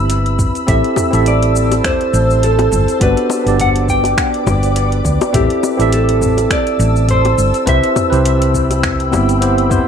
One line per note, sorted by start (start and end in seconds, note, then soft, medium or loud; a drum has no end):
0.00 0.50 G1 loud
0.00 0.67 C4 medium
0.00 0.67 E4 medium
0.00 0.68 G4 medium
0.00 0.70 B4 medium
0.00 0.69 E5 loud
0.00 0.66 B5 medium
0.00 2.97 E6 medium
0.10 closed hi-hat medium
0.10 cabasa soft
0.26 closed hi-hat soft
0.39 kick medium
0.39 mid tom medium
0.39 cabasa medium
0.55 closed hi-hat soft
0.55 cabasa soft
0.67 0.81 A1 medium
0.67 1.09 C4 loud
0.67 1.09 E4 medium
0.67 1.09 G4 medium
0.67 1.10 A4 medium
0.67 2.99 C5 medium
0.67 1.10 E5 loud
0.67 1.27 E5 medium
0.67 2.99 A5 medium
0.67 kick loud
0.67 closed hi-hat medium
0.67 cabasa soft
0.84 closed hi-hat soft
0.96 mid tom medium
0.96 high bongo medium
0.96 cabasa medium
1.11 1.80 A1 medium
1.11 2.97 C4 medium
1.11 2.97 E4 medium
1.11 2.98 G4 medium
1.11 2.98 A4 medium
1.11 closed hi-hat soft
1.11 cabasa soft
1.15 2.99 E5 loud
1.26 1.87 D5 loud
1.26 closed hi-hat medium
1.26 cabasa soft
1.43 closed hi-hat soft
1.56 cabasa medium
1.72 closed hi-hat soft
1.72 high bongo medium
1.72 cabasa soft
1.84 2.39 C5 medium
1.84 finger snap medium
1.84 kick loud
1.84 closed hi-hat medium
1.84 mid tom medium
1.84 cabasa soft
2.01 closed hi-hat soft
2.14 2.67 A1 loud
2.14 cabasa medium
2.30 cabasa soft
2.43 3.02 A4 medium
2.43 closed hi-hat medium
2.43 cabasa soft
2.59 closed hi-hat soft
2.59 high bongo medium
2.72 2.85 G1 loud
2.72 mid tom medium
2.72 cabasa medium
2.88 closed hi-hat soft
2.88 cabasa soft
3.00 3.14 G1 medium
3.00 3.42 B3 medium
3.00 3.42 D4 medium
3.00 3.42 F#4 medium
3.00 3.43 G4 medium
3.00 5.32 B4 medium
3.00 3.56 B4 loud
3.00 5.32 D5 medium
3.00 3.43 D5 loud
3.00 5.32 D6 medium
3.00 kick loud
3.00 closed hi-hat medium
3.00 cabasa soft
3.17 closed hi-hat soft
3.30 high bongo medium
3.30 cabasa medium
3.44 4.13 G1 medium
3.44 5.30 B3 medium
3.44 5.30 D4 medium
3.44 5.31 G4 medium
3.44 closed hi-hat soft
3.44 cabasa soft
3.48 5.32 D5 medium
3.60 3.69 F#5 loud
3.60 closed hi-hat medium
3.60 mid tom medium
3.60 cabasa soft
3.76 closed hi-hat soft
3.88 4.43 G5 loud
3.88 kick medium
3.88 cabasa medium
4.04 closed hi-hat soft
4.04 high bongo medium
4.04 cabasa soft
4.18 finger snap medium
4.18 kick loud
4.18 closed hi-hat medium
4.18 cabasa soft
4.34 closed hi-hat soft
4.47 5.01 G1 loud
4.47 mid tom medium
4.47 high bongo medium
4.47 cabasa medium
4.63 closed hi-hat soft
4.63 cabasa soft
4.76 closed hi-hat medium
4.76 cabasa soft
4.92 closed hi-hat soft
5.05 5.18 D2 loud
5.05 kick medium
5.05 cabasa medium
5.21 closed hi-hat soft
5.21 high bongo medium
5.21 cabasa soft
5.33 5.47 A1 loud
5.33 5.75 C4 loud
5.33 5.75 E4 medium
5.33 5.75 G4 medium
5.33 5.93 G4 medium
5.33 5.76 A4 medium
5.33 5.76 E5 loud
5.33 7.65 A5 medium
5.33 9.88 E6 medium
5.33 kick loud
5.33 closed hi-hat medium
5.33 mid tom medium
5.33 cabasa soft
5.50 closed hi-hat soft
5.63 high bongo medium
5.63 cabasa medium
5.77 6.46 A1 medium
5.77 7.63 C4 loud
5.77 7.63 E4 medium
5.77 7.64 G4 medium
5.77 7.65 A4 medium
5.77 closed hi-hat soft
5.77 cabasa soft
5.82 7.65 E5 loud
5.92 6.53 A4 loud
5.92 closed hi-hat medium
5.92 cabasa soft
6.09 closed hi-hat soft
6.22 mid tom medium
6.22 cabasa medium
6.37 closed hi-hat soft
6.37 high bongo medium
6.37 cabasa soft
6.50 7.10 D5 loud
6.50 finger snap medium
6.50 kick loud
6.50 closed hi-hat medium
6.50 cabasa soft
6.67 closed hi-hat soft
6.79 7.33 A1 loud
6.79 cabasa medium
6.96 cabasa soft
7.09 7.64 C5 loud
7.09 closed hi-hat medium
7.09 mid tom medium
7.09 cabasa soft
7.25 closed hi-hat soft
7.25 high bongo medium
7.38 7.51 G1 medium
7.38 cabasa medium
7.54 closed hi-hat soft
7.54 cabasa soft
7.66 7.80 C2 loud
7.66 8.08 C4 medium
7.66 8.08 E4 medium
7.66 8.09 G4 medium
7.66 8.08 B4 medium
7.66 8.09 C5 loud
7.66 8.80 E5 loud
7.66 9.88 G5 medium
7.66 9.88 B5 medium
7.66 kick loud
7.66 closed hi-hat medium
7.66 cabasa soft
7.84 closed hi-hat soft
7.96 mid tom medium
7.96 high bongo medium
7.96 cabasa medium
8.10 9.14 C2 medium
8.10 9.09 C4 medium
8.10 9.10 E4 medium
8.10 9.10 G4 medium
8.10 9.09 B4 medium
8.10 closed hi-hat soft
8.10 cabasa soft
8.14 9.11 C5 medium
8.25 closed hi-hat medium
8.25 cabasa soft
8.42 closed hi-hat soft
8.54 kick medium
8.54 cabasa medium
8.71 closed hi-hat soft
8.71 high bongo medium
8.71 cabasa soft
8.83 finger snap medium
8.83 kick loud
8.83 closed hi-hat medium
8.83 mid tom medium
8.83 cabasa soft
9.00 closed hi-hat soft
9.11 9.82 G1 loud
9.11 9.38 B3 medium
9.11 9.38 C4 medium
9.11 9.39 E4 medium
9.11 9.39 G4 medium
9.11 9.39 E5 medium
9.11 high bongo medium
9.11 cabasa medium
9.29 closed hi-hat soft
9.29 cabasa soft
9.40 9.67 B3 medium
9.40 9.67 C4 medium
9.40 9.67 E4 medium
9.40 9.68 G4 medium
9.40 9.68 C5 medium
9.40 closed hi-hat medium
9.40 cabasa soft
9.58 closed hi-hat soft
9.70 9.88 B3 medium
9.70 9.88 C4 medium
9.70 9.88 E4 medium
9.70 9.88 G4 medium
9.70 9.88 C5 loud
9.70 kick medium
9.70 mid tom medium
9.70 cabasa medium